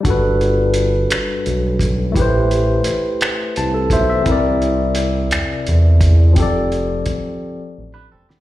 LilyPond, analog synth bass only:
\new Staff \with { instrumentName = "Analog synth bass" } { \clef bass \time 6/8 \key g \major \tempo 4. = 57 g,,4. b,,8 b,,4 | a,,4 c,8 r8 c,8 b,,8 | c,4. e,8 e,4 | f,,4 a,,8 r8 a,,8 e,,8 | }